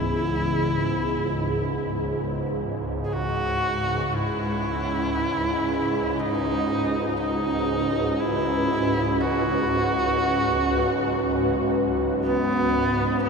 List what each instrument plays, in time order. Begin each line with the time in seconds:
Already playing: synth drone C#2 G#2, analog synth pad C#3 E3 B3 G#4, horsehead fiddle E4
3.04 horsehead fiddle G#4
3.13 horsehead fiddle F#4
4.15 analog synth pad C#4, horsehead fiddle E4
5.73 analog synth pad F#4
6.19 horsehead fiddle D#4
6.98 analog synth pad B4
7.20 horsehead fiddle D#4
8.20 horsehead fiddle E4
9.21 horsehead fiddle F#4
12.23 horsehead fiddle B3
13.23 horsehead fiddle B3